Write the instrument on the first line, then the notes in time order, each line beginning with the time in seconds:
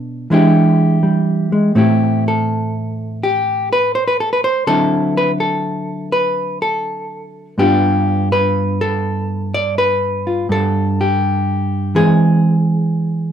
hollow-body jazz guitar
Already playing: B2 B3 D4 A4 D5
0.30 E3 G#3 D4 E4 G4
1.03 G3
1.52 G#3
1.75 A2 A3 C4 E4 G4
2.28 A4
3.23 G4
3.73 B4
3.95 C5
4.08 B4
4.20 A4
4.33 B4
4.44 C5
4.67 D3 F#3 C4 E4 A4
5.17 B4
5.40 A4
6.12 B4
6.62 A4
7.58 G2 B3 D4 F4 G4
8.32 B4
8.81 A4
9.54 D5
9.78 B4
10.27 F4
10.49 G2 A4
11.01 G4
11.95 E3 G#3 C4 G#4